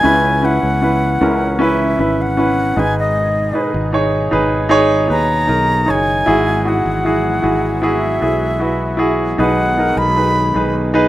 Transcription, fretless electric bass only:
0.04 0.59 C#2 medium
0.63 1.17 C#2 medium
1.21 1.95 C#2 medium
1.99 2.73 G#1 medium
2.77 3.51 G#1 medium
3.74 4.29 G#1 medium
4.33 5.07 G#1 medium
5.10 5.47 D#2 medium
5.49 5.85 B1 medium
5.89 6.25 F#1 medium
6.28 6.82 G#1 medium
6.86 7.40 G#1 medium
7.44 8.18 G#1 medium
8.22 9.35 B1 medium
9.39 9.93 B1 medium
9.97 10.52 B1 medium
10.56 11.08 B1 medium

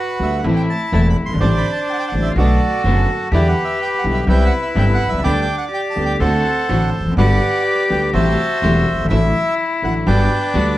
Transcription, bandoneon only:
0.00 0.41 F#4 medium
0.00 0.41 B4 medium
0.23 0.38 E5 medium
0.39 0.45 F#5 medium
0.56 0.62 G5 medium
0.70 0.92 A5 loud
0.94 1.08 A5 medium
1.10 1.17 B5 loud
1.26 1.40 C6 loud
1.40 2.32 C5 medium
1.40 2.32 D5 medium
1.40 1.49 A5 loud
1.58 1.72 B5 loud
1.73 1.80 A5 medium
1.93 1.97 F#5 medium
1.99 2.06 G5 loud
2.08 2.14 F#5 medium
2.22 2.29 E5 medium
2.37 3.28 F#4 medium
2.37 3.28 A4 medium
2.37 2.82 D5 medium
3.33 4.24 G4 medium
3.33 4.25 B4 medium
3.33 3.48 D5 medium
3.49 3.63 F#5 medium
3.64 3.79 E5 medium
3.82 3.89 G5 loud
3.98 4.05 F#5 medium
4.14 4.20 E5 medium
4.29 5.21 B4 medium
4.29 4.61 E5 medium
4.29 4.44 G5 medium
4.46 4.53 F#5 loud
4.62 4.69 E5 medium
4.78 4.85 G5 medium
4.94 5.10 F#5 loud
5.09 5.23 E5 loud
5.24 6.17 D5 medium
5.24 5.40 G5 medium
5.24 5.32 B5 loud
5.42 5.56 G5 loud
5.58 5.65 F#5 medium
5.74 5.81 G5 medium
5.90 6.04 A5 medium
6.06 6.13 G5 loud
6.20 7.14 A4 medium
6.20 7.14 C5 medium
6.20 6.90 F#5 medium
7.18 8.10 B4 medium
7.18 8.10 D5 medium
7.18 7.63 F#5 loud
7.92 8.02 G5 medium
8.14 9.06 C5 medium
8.14 9.06 E5 medium
8.14 8.59 A5 loud
8.62 8.73 C6 medium
9.09 9.54 E5 loud
9.84 9.94 F#5 medium
10.07 10.78 B4 medium
10.07 10.78 D5 medium
10.07 10.56 G5 loud
10.56 10.66 B5 medium

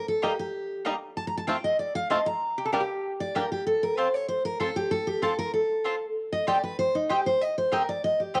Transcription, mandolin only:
0.22 0.32 A#3 loud
0.22 0.32 G4 loud
0.22 0.32 D#5 loud
0.22 0.32 A#5 loud
0.85 0.94 A#3 loud
0.85 0.95 G4 medium
0.85 0.95 D#5 loud
0.85 0.95 A#5 loud
1.47 1.57 C4 medium
1.47 1.57 F4 loud
1.47 1.57 C5 loud
1.47 1.57 A5 loud
2.10 2.19 C4 medium
2.10 2.20 F4 loud
2.10 2.20 C5 loud
2.10 2.20 A5 loud
2.72 2.82 A#3 medium
2.72 2.82 G4 loud
2.72 2.82 D5 loud
2.72 2.83 G5 loud
3.35 3.44 A#3 medium
3.35 3.45 G4 loud
3.35 3.45 D5 loud
3.35 3.45 G5 loud
3.97 4.07 C4 loud
3.97 4.07 F4 loud
3.97 4.07 C5 loud
3.97 4.07 A5 loud
4.60 4.69 C4 medium
4.60 4.69 F4 loud
4.60 4.70 C5 loud
4.60 4.70 A5 loud
5.22 5.32 C4 medium
5.22 5.32 F4 loud
5.22 5.32 C5 loud
5.22 5.32 A5 loud
5.84 5.94 C4 medium
5.84 5.94 F4 loud
5.84 5.95 C5 loud
5.84 5.95 A5 loud
6.47 6.57 C4 loud
6.47 6.57 G4 loud
6.47 6.57 D#5 loud
6.47 6.57 G5 loud
7.09 7.19 C4 loud
7.09 7.19 G4 loud
7.09 7.20 D#5 loud
7.09 7.20 G5 loud
7.72 7.81 C4 loud
7.72 7.82 G4 loud
7.72 7.82 D#5 loud
7.72 7.82 G5 loud
8.34 8.40 C4 loud
8.34 8.40 G4 medium
8.34 8.40 D#5 loud
8.34 8.40 G5 loud

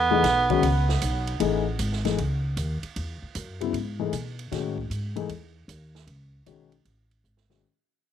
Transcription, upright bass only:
0.00 0.22 E2 medium
0.23 0.61 B1 medium
0.63 1.00 C#2 medium
1.02 1.40 B1 medium
1.40 1.78 A1 medium
1.79 2.17 G#1 medium
2.18 2.56 C#2 medium
2.57 2.81 D#2 medium
2.83 muted upright bass stroke soft
2.96 3.20 E2 medium
3.22 muted upright bass stroke soft
3.35 3.72 F#2 medium
3.73 4.11 G#2 medium
4.13 4.51 B2 medium
4.52 4.89 A2 medium
4.90 5.28 G#2 medium
5.29 5.67 E2 medium
5.68 6.06 D#2 medium
6.07 6.45 C#2 medium
6.46 6.84 B1 medium
6.85 7.23 A1 medium
7.24 7.62 G#1 medium

